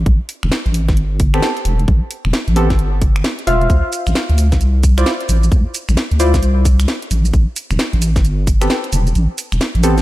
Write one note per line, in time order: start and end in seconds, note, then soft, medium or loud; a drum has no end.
0.06 0.18 A1 loud
0.06 kick loud
0.06 closed hi-hat medium
0.29 open hi-hat loud
0.43 0.50 E1 medium
0.43 finger snap medium
0.52 snare loud
0.66 0.90 A1 medium
0.66 closed hi-hat soft
0.74 open hi-hat medium
0.88 1.41 G1 medium
0.88 kick loud
0.88 snare medium
0.88 closed hi-hat medium
0.97 closed hi-hat medium
1.20 kick loud
1.20 open hi-hat loud
1.34 1.47 B3 loud
1.34 1.47 C4 medium
1.34 1.47 G4 medium
1.34 1.47 A4 loud
1.34 finger snap medium
1.34 closed hi-hat medium
1.42 snare loud
1.57 closed hi-hat soft
1.65 1.85 E1 loud
1.65 open hi-hat medium
1.79 closed hi-hat soft
1.88 2.00 A1 loud
1.88 kick loud
1.88 closed hi-hat medium
2.11 open hi-hat loud
2.25 2.32 E1 medium
2.25 finger snap soft
2.33 snare loud
2.48 2.72 A1 medium
2.48 closed hi-hat soft
2.56 2.68 B3 loud
2.56 2.68 C4 medium
2.56 2.68 G4 medium
2.56 2.68 A4 loud
2.56 open hi-hat medium
2.70 3.22 G1 medium
2.70 kick loud
2.70 snare medium
2.70 closed hi-hat medium
2.79 closed hi-hat medium
3.02 kick loud
3.02 open hi-hat loud
3.16 finger snap medium
3.16 closed hi-hat medium
3.24 snare loud
3.39 closed hi-hat soft
3.47 3.67 E1 loud
3.47 4.94 F4 medium
3.47 4.94 C5 medium
3.47 4.94 E5 medium
3.47 4.94 F5 loud
3.47 open hi-hat medium
3.61 closed hi-hat soft
3.70 3.82 D2 loud
3.70 kick loud
3.70 closed hi-hat medium
3.70 shaker soft
3.93 open hi-hat loud
3.93 shaker medium
4.07 4.14 A1 medium
4.07 finger snap soft
4.07 shaker soft
4.15 snare loud
4.15 shaker soft
4.29 4.54 D2 medium
4.29 closed hi-hat soft
4.38 open hi-hat medium
4.38 shaker medium
4.52 5.04 C2 medium
4.52 kick loud
4.52 snare medium
4.52 closed hi-hat medium
4.52 shaker soft
4.61 closed hi-hat medium
4.61 shaker soft
4.83 kick loud
4.83 open hi-hat loud
4.83 shaker medium
4.98 5.11 E4 medium
4.98 5.11 F4 medium
4.98 5.11 C5 medium
4.98 5.11 D5 loud
4.98 finger snap medium
4.98 closed hi-hat medium
4.98 shaker soft
5.06 snare loud
5.06 shaker soft
5.20 closed hi-hat medium
5.29 5.49 A1 loud
5.29 open hi-hat medium
5.29 shaker medium
5.43 closed hi-hat soft
5.43 shaker soft
5.52 5.64 D2 loud
5.52 kick loud
5.52 closed hi-hat medium
5.52 shaker soft
5.75 open hi-hat loud
5.75 shaker medium
5.89 5.96 A1 loud
5.89 finger snap soft
5.89 shaker soft
5.97 snare loud
5.97 shaker soft
6.11 6.36 D2 medium
6.11 closed hi-hat soft
6.20 6.32 E4 medium
6.20 6.32 F4 medium
6.20 6.32 C5 medium
6.20 6.32 D5 loud
6.20 open hi-hat medium
6.20 shaker medium
6.34 6.86 C2 medium
6.34 kick loud
6.34 snare medium
6.34 closed hi-hat medium
6.34 shaker soft
6.43 closed hi-hat medium
6.43 shaker soft
6.65 kick loud
6.65 open hi-hat loud
6.65 shaker medium
6.80 finger snap medium
6.80 closed hi-hat medium
6.80 shaker soft
6.88 snare loud
6.88 shaker soft
7.02 closed hi-hat medium
7.11 7.31 A1 loud
7.11 open hi-hat medium
7.11 shaker medium
7.25 closed hi-hat soft
7.25 shaker soft
7.34 7.46 A1 loud
7.34 kick loud
7.34 closed hi-hat medium
7.34 shaker soft
7.56 open hi-hat loud
7.56 shaker medium
7.71 7.78 E1 medium
7.71 finger snap soft
7.71 shaker soft
7.79 snare loud
7.79 shaker soft
7.93 8.17 A1 medium
7.93 closed hi-hat soft
8.02 open hi-hat loud
8.02 shaker medium
8.16 8.68 G1 medium
8.16 kick loud
8.16 snare medium
8.16 closed hi-hat medium
8.16 shaker soft
8.25 closed hi-hat medium
8.25 shaker soft
8.47 kick medium
8.47 open hi-hat loud
8.47 shaker medium
8.61 8.74 B3 loud
8.61 8.74 C4 medium
8.61 8.74 G4 medium
8.61 8.74 A4 loud
8.61 finger snap medium
8.61 closed hi-hat medium
8.61 shaker soft
8.70 snare loud
8.70 shaker soft
8.84 closed hi-hat medium
8.93 9.13 E1 loud
8.93 open hi-hat medium
8.93 shaker medium
9.07 closed hi-hat soft
9.07 shaker soft
9.15 9.27 A1 loud
9.15 closed hi-hat medium
9.15 shaker soft
9.38 open hi-hat loud
9.38 shaker medium
9.52 9.59 E1 medium
9.52 finger snap medium
9.52 shaker soft
9.61 snare loud
9.61 shaker soft
9.75 9.99 A1 medium
9.75 closed hi-hat soft
9.83 9.95 B3 loud
9.83 9.95 C4 medium
9.83 9.95 G4 medium
9.83 9.95 A4 loud
9.83 open hi-hat loud
9.83 shaker medium
9.98 10.02 G1 medium
9.98 snare medium
9.98 closed hi-hat medium
9.98 shaker soft